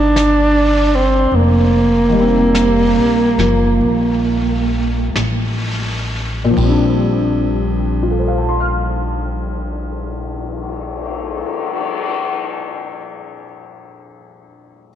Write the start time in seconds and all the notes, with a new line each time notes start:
Already playing: G1 D#3 G3 A#3 D4
0.16 brush sweep, snare, hi-hat pedal
0.95 C4
1.32 F1, brush sweep
1.36 A#3
2.09 D#3 G3
2.16 A#3
2.20 C4
2.55 brush sweep, snare, hi-hat pedal
2.96 A#1
3.38 F#1 F3 A#3, snare
3.81 A#1, brush sweep
5.15 A1, brush sweep, snare, hi-hat pedal
6.44 A#2
6.50 F3
6.57 A#1 G3, kick, ride
6.63 C4
6.69 D4
7.56 cymbal swell
8.03 F4
8.11 A4
8.19 C5
8.28 F5
8.38 A5
8.49 C6
8.60 F6